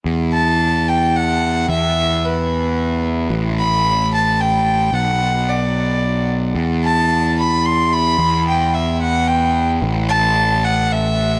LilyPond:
<<
  \new Staff \with { instrumentName = "Violin" } { \time 3/4 \key e \minor \tempo 4 = 111 r8 a''4 g''8 fis''4 | e''4 b'4. r8 | r8 b''4 a''8 g''4 | fis''4 d''4. r8 |
r8 a''4 b''8 c'''8 b''8~ | b''8 g''8 e''8 fis''8 g''8. r16 | r8 a''4 fis''8 e''4 | }
  \new Staff \with { instrumentName = "Picked electric bass" } { \clef bass \time 3/4 \key e \minor e,2. | e,2. | a,,2. | b,,2. |
e,2. | e,2. | a,,2. | }
>>